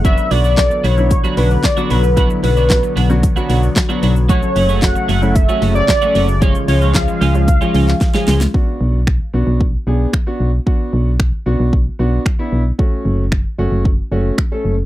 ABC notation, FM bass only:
X:1
M:4/4
L:1/16
Q:1/4=113
K:Bdor
V:1 name="FM bass" clef=bass
F,,,2 B,,,4 B,,,4 B,,,2 z2 B,,,2- | B,,,2 B,,,4 B,,,4 B,,,2 z2 B,,,2- | B,,,2 F,,,4 F,,,4 F,,,2 z2 F,,,2- | F,,,2 C,,4 C,,4 C,,2 z2 C,,2 |
z2 B,,,4 B,,, B,,,3 B,,,2 z2 B,,,2 | z2 B,,,4 B,,, B,,,3 B,,,2 z2 B,,,2 | z2 F,,,4 F,,, F,,,3 F,,,2 z2 F,,,2 |]